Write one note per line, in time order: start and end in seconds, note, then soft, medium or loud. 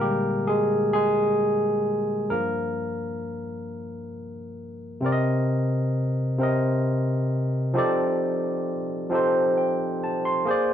0.00 0.89 A#2 soft
0.00 0.90 D3 soft
0.00 0.48 G#3 medium
0.00 2.32 A#3 medium
0.00 0.44 G4 medium
0.00 2.30 A#4 loud
0.04 0.46 G3 medium
0.47 0.91 G#3 medium
0.47 0.92 G#4 medium
0.93 2.27 G#3 medium
0.93 2.34 G#4 medium
2.30 2.91 G2 medium
2.30 2.91 F3 medium
2.30 4.09 A#3 medium
2.30 4.08 A#4 medium
5.01 5.97 C3 medium
5.01 5.98 C4 medium
5.01 5.99 A#4 medium
5.06 5.11 D5 medium
5.12 6.03 D#5 medium
6.38 7.34 C3 medium
6.38 7.35 C4 medium
6.38 7.36 A#4 medium
6.43 7.37 D#5 medium
7.74 8.70 F3 medium
7.74 8.71 C4 medium
7.74 8.71 D#4 medium
7.74 8.72 G4 medium
7.74 8.72 A4 medium
7.79 8.73 D5 medium
9.10 10.07 F3 medium
9.10 10.07 C4 medium
9.10 10.08 D#4 medium
9.10 10.08 G4 medium
9.14 10.09 A4 medium
9.14 10.09 C5 medium
9.58 10.01 G5 medium
10.04 10.25 A5 medium
10.25 10.68 C6 medium
10.45 10.74 A#3 medium
10.45 10.74 G#4 medium
10.45 10.74 C5 medium
10.51 10.74 D5 medium